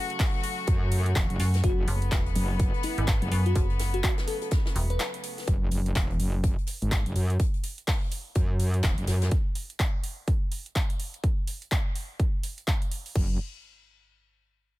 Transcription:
Already playing: string section C#3 F#3 A3 F#4
0.10 closed hi-hat
0.19 kick, snare, clap, closed hi-hat, open hi-hat
0.43 closed hi-hat, open hi-hat
0.67 wobble bass F#2, kick, closed hi-hat
0.92 closed hi-hat, open hi-hat
1.06 closed hi-hat
1.16 wobble bass E1, kick, snare, clap, closed hi-hat
1.30 wobble bass F#1, closed hi-hat
1.40 fm bass F#2, snare, closed hi-hat, open hi-hat
1.54 snare, closed hi-hat
1.63 wobble bass F#1, string section B3, fm electric piano F#4, kick, closed hi-hat
1.88 fm bass F#1, closed hi-hat, open hi-hat
2.02 closed hi-hat
2.12 fm bass E1, kick, snare, clap, closed hi-hat
2.26 closed hi-hat
2.35 wobble bass F#1, closed hi-hat, open hi-hat
2.60 kick, closed hi-hat
2.74 closed hi-hat
2.83 fm electric piano E4, closed hi-hat, open hi-hat
2.98 fm bass G#1, closed hi-hat
3.07 kick, snare, clap, closed hi-hat
3.22 wobble bass F#1, closed hi-hat
3.32 fm bass F#2, closed hi-hat, open hi-hat
3.46 fm electric piano F#4, closed hi-hat
3.55 fm bass F#1, kick, closed hi-hat
3.70 closed hi-hat
3.79 snare, closed hi-hat, open hi-hat
3.94 fm electric piano F#4, closed hi-hat
4.03 fm electric piano F#4, kick, clap, closed hi-hat
4.18 snare, closed hi-hat
4.28 fm electric piano A4, open hi-hat
4.42 fm electric piano A4, closed hi-hat
4.51 kick, snare, closed hi-hat
4.66 snare, closed hi-hat
4.76 fm bass E1, closed hi-hat, open hi-hat
4.90 fm electric piano B4, closed hi-hat
5.00 snare, clap, closed hi-hat
5.14 closed hi-hat
5.23 closed hi-hat, open hi-hat
5.38 snare, open hi-hat
5.47 wobble bass F#1, kick, closed hi-hat
5.71 wobble bass F#1, closed hi-hat, open hi-hat
5.86 closed hi-hat
5.95 wobble bass E1, kick, snare, clap, closed hi-hat
6.10 closed hi-hat
6.19 wobble bass F#1, closed hi-hat, open hi-hat
6.44 kick, closed hi-hat
6.59 closed hi-hat
6.67 closed hi-hat, open hi-hat
6.82 wobble bass G#1, closed hi-hat
6.91 kick, snare, clap, closed hi-hat
7.06 wobble bass F#1, closed hi-hat
7.16 wobble bass F#2, closed hi-hat, open hi-hat
7.30 closed hi-hat
7.40 kick, closed hi-hat
7.54 closed hi-hat
7.64 closed hi-hat, open hi-hat
7.78 closed hi-hat
7.88 kick, snare, clap, closed hi-hat, open hi-hat
8.12 closed hi-hat, open hi-hat
8.35 wobble bass F#2, kick, closed hi-hat
8.60 closed hi-hat, open hi-hat
8.74 closed hi-hat
8.83 wobble bass E1, kick, snare, clap, closed hi-hat
8.98 wobble bass F#1, closed hi-hat
9.07 wobble bass F#2, snare, closed hi-hat, open hi-hat
9.22 snare, closed hi-hat
9.31 kick, closed hi-hat
9.55 open hi-hat
9.70 closed hi-hat
9.79 kick, clap, closed hi-hat
10.04 open hi-hat
10.28 kick, closed hi-hat
10.52 open hi-hat
10.66 closed hi-hat
10.76 kick, clap, closed hi-hat
10.90 closed hi-hat
11.00 open hi-hat
11.14 closed hi-hat
11.24 kick, closed hi-hat
11.47 open hi-hat
11.62 closed hi-hat
11.71 kick, clap, closed hi-hat
11.96 open hi-hat
12.20 kick, closed hi-hat
12.43 open hi-hat
12.58 closed hi-hat
12.67 kick, clap, closed hi-hat
12.82 closed hi-hat
12.91 open hi-hat
13.06 open hi-hat
13.15 wobble bass F#1, kick, crash

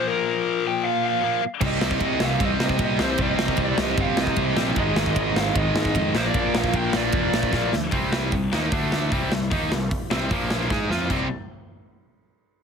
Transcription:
Already playing: distorted electric guitar A#2 F3 A#3
0.08 overdriven electric guitar A#4
0.67 overdriven electric guitar G5
0.85 overdriven electric guitar F5
1.06 overdriven electric guitar F5
1.21 distorted electric guitar A#2 F3 A#3
1.61 picked electric bass C2, distorted electric guitar C3 G3 C4, kick, crash
1.66 overdriven electric guitar D#5
1.81 picked electric bass C2, snare
1.91 kick
2.00 picked electric bass C2, kick, ride
2.06 overdriven electric guitar D#5
2.20 picked electric bass C2, overdriven electric guitar F5, snare
2.39 picked electric bass C2, distorted electric guitar C3 G3 C4, kick, ride
2.44 overdriven electric guitar D#5
2.60 picked electric bass C3, overdriven electric guitar D#5, snare
2.69 kick
2.79 picked electric bass A#2, kick, ride
2.85 overdriven electric guitar D#5
2.99 picked electric bass C2, distorted electric guitar C3 G3 C4, overdriven electric guitar C5, snare
3.18 picked electric bass C2, distorted electric guitar C3 G3 C4, kick, ride
3.22 overdriven electric guitar D#5
3.38 picked electric bass C2, snare
3.48 kick
3.57 picked electric bass C2, kick, ride
3.65 overdriven electric guitar D5
3.78 picked electric bass C2, overdriven electric guitar D#5, snare
3.97 picked electric bass G1, distorted electric guitar C3 G3 C4, overdriven electric guitar F5, kick, ride
4.17 picked electric bass C2, snare
4.21 overdriven electric guitar D#5
4.27 kick
4.36 picked electric bass C2, kick, ride
4.56 picked electric bass A#1, distorted electric guitar C3 G3 C4, snare
4.76 picked electric bass G#1, distorted electric guitar G#2 D#3 G#3, overdriven electric guitar D#5, kick, ride
4.96 picked electric bass G#1, snare
5.06 kick
5.16 picked electric bass G#1, kick, ride
5.20 overdriven electric guitar D#5
5.35 picked electric bass G#1, overdriven electric guitar F5, snare
5.54 picked electric bass G#1, distorted electric guitar G#2 D#3 G#3, overdriven electric guitar D#5, kick, ride
5.75 picked electric bass G#2, snare
5.85 kick
5.95 picked electric bass F2, overdriven electric guitar D#5, kick, ride
6.14 picked electric bass A#1, distorted electric guitar A#2 F3 A#3, overdriven electric guitar C5, snare
6.26 overdriven electric guitar D5
6.34 picked electric bass A#1, overdriven electric guitar D5, kick, ride
6.55 picked electric bass A#1, overdriven electric guitar F5, snare
6.64 kick
6.73 picked electric bass A#1, overdriven electric guitar G5, kick, ride
6.93 picked electric bass A#1, distorted electric guitar F3 A#3, overdriven electric guitar D5, snare
6.98 distorted electric guitar A#2
7.12 picked electric bass F1, kick, ride
7.33 picked electric bass A#1, snare
7.43 kick
7.53 picked electric bass A#1, distorted electric guitar A#2 F3 A#3, kick, snare
7.73 picked electric bass D2, snare
7.91 picked electric bass C2, distorted electric guitar C3 G3 C4, kick, open hi-hat
8.13 snare
8.32 picked electric bass C2, distorted electric guitar C3 G3, kick, open hi-hat
8.52 picked electric bass D#2, distorted electric guitar D#3 A#3 D#4, snare
8.72 picked electric bass D2, distorted electric guitar D3 A3 D4, kick, open hi-hat
8.92 snare
9.11 picked electric bass C2, distorted electric guitar C3 G3 C4, kick, open hi-hat
9.31 picked electric bass C2, distorted electric guitar C3 G3, snare
9.50 picked electric bass D#2, distorted electric guitar D#3 A#3 D#4, kick, open hi-hat
9.71 picked electric bass C2, distorted electric guitar C3 G3, snare
9.91 kick, open hi-hat
10.11 picked electric bass C2, distorted electric guitar C3 G3 C4, snare
10.31 picked electric bass A#1, distorted electric guitar A#2 F3 A#3, kick, open hi-hat
10.50 snare
10.69 picked electric bass G#2, distorted electric guitar G#3 D#4 G#4, kick, snare
10.89 picked electric bass F2, distorted electric guitar F3 C4 F4, snare
11.09 picked electric bass C2, distorted electric guitar C3 G3 C4, kick, crash

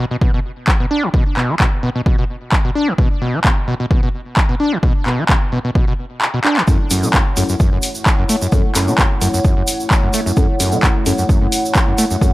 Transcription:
0.11 acid bass B2
0.21 acid bass B2, kick
0.34 acid bass B2
0.68 kick, clap
0.80 acid bass B2
0.91 acid bass D4
1.03 acid bass C#3
1.14 acid bass B2, kick
1.37 acid bass B2, clap
1.49 acid bass F#3
1.60 acid bass B2, kick, clap
1.83 acid bass B2
1.95 acid bass B2
2.06 acid bass B2, kick
2.19 acid bass B2
2.52 kick, clap
2.65 acid bass B2
2.75 acid bass D4
2.88 acid bass C#3
2.98 acid bass B2, kick
3.22 acid bass B2
3.34 acid bass F#3
3.45 acid bass B2, kick, clap
3.68 acid bass B2
3.80 acid bass B2
3.91 acid bass B2, kick
4.03 acid bass B2
4.37 kick, clap
4.49 acid bass B2
4.60 acid bass D4
4.72 acid bass C#3
4.83 acid bass B2, kick
5.06 acid bass B2, clap
5.18 acid bass F#3
5.29 acid bass B2, kick, clap
5.52 acid bass B2
5.65 acid bass B2
5.75 acid bass B2, kick
5.88 acid bass B2
6.22 clap
6.34 acid bass B2
6.45 acid bass D4, clap
6.57 acid bass C#3, clap
6.68 acid bass F#2, synth stab F#3 C#4 E4 A4, analog synth pad A3 E4 C#5 F#5, kick, shaker
6.90 acid bass F#2, synth stab F#3 C#4 E4 A4, open hi-hat, shaker
7.03 acid bass C#3, synth stab F#3 C#4 E4 A4, shaker
7.13 acid bass F#2, kick, clap, shaker
7.37 acid bass F#2, synth stab F#3 C#4 E4 A4, open hi-hat, shaker
7.49 acid bass F#2, shaker
7.60 acid bass F#2, kick, shaker
7.72 acid bass F#2
7.82 open hi-hat, shaker
7.95 shaker
8.06 kick, clap, shaker
8.19 acid bass F#2
8.29 acid bass A3, open hi-hat, shaker
8.42 acid bass F#2, shaker
8.52 acid bass F#2, synth stab F#3 C#4 E4 A4, kick, shaker
8.75 acid bass F#2, synth stab F#3 C#4 E4 A4, clap, open hi-hat, shaker
8.88 acid bass C#3, synth stab F#3 C#4 E4 A4, shaker
8.98 acid bass F#2, kick, clap, shaker
9.21 acid bass F#2, synth stab F#3 C#4 E4 A4, open hi-hat, shaker
9.34 acid bass F#2, shaker
9.44 acid bass F#2, kick, shaker
9.57 acid bass F#2
9.67 open hi-hat, shaker
9.80 shaker
9.91 kick, clap, shaker
10.03 acid bass F#2
10.13 acid bass A3, open hi-hat, shaker
10.26 acid bass F#2, shaker
10.37 acid bass F#2, synth stab F#3 C#4 E4 A4, kick, shaker
10.60 acid bass F#2, synth stab F#3 C#4 E4 A4, open hi-hat, shaker
10.72 acid bass C#3, synth stab F#3 C#4 E4 A4, shaker
10.83 acid bass F#2, kick, clap, shaker
11.06 acid bass F#2, synth stab F#3 C#4 E4 A4, open hi-hat, shaker
11.18 acid bass F#2, shaker
11.29 acid bass F#2, kick, shaker
11.42 acid bass F#2
11.52 open hi-hat, shaker
11.65 shaker
11.75 kick, clap, shaker
11.88 acid bass F#2
11.98 acid bass A3, open hi-hat, shaker
12.11 acid bass F#2, shaker
12.21 acid bass F#2, synth stab F#3 C#4 E4 A4, kick, shaker

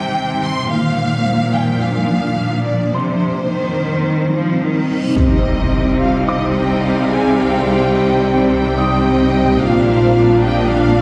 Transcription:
Already playing: cello section C3, ambient pad D#3 G3 D#4 C5, violin section G5
0.44 violin section C6
0.71 cello section A#2, ambient pad F3 A#3 D4 D5, violin section F5
1.55 violin section G5, felt piano G#5
1.82 violin section F5
2.65 violin section D5
2.94 cello section C3, ambient pad G3 C4 D#4 C5, violin section C5, felt piano C6, reverse cymbal
3.49 cello section D#3
4.33 cello section F3
4.61 cello section D#3
5.15 double bass section C2, cello section C3, ambient pad G3 C4 D#4 C5, trombone section G3 C4, viola section G3 C4, french horn section D#4, violin section D#5, impact
6.00 french horn section F4, violin section F5
6.26 french horn section D#4, violin section D#5, felt piano D#5 D6
6.55 violin section G5
6.83 violin section F5
7.10 french horn section G#4, violin section G#5
7.38 french horn section G4, violin section G5
7.94 violin section D#5
8.22 violin section D5
8.49 french horn section G4, violin section C5 G5
8.77 violin section D5, felt piano D#6
9.05 violin section D#5
9.60 double bass section A#1, cello section A#2, ambient pad F3 A#3 D4 F5, trombone section F3 D4, viola section A#3 D4, french horn section F4, violin section F5
9.89 violin section C5
10.16 violin section D5
10.43 french horn section G4, violin section D#5 G5
10.71 french horn section F4, violin section F5

